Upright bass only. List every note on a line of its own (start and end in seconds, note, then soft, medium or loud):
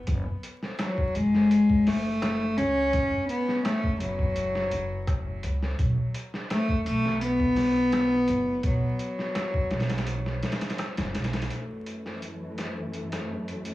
0.08 0.24 F#1 loud
1.17 2.55 F#1 medium
2.59 2.90 C#2 medium
2.94 3.10 F#1 medium
4.02 4.69 F#1 medium
4.73 5.41 F#1 medium
5.44 5.75 C#2 medium
5.79 5.96 B1 medium
6.87 8.26 B1 medium
8.29 8.61 F#1 medium
8.64 8.81 B1 medium
9.72 10.40 B1 medium
10.98 11.13 F#1 loud
11.15 11.46 B1 medium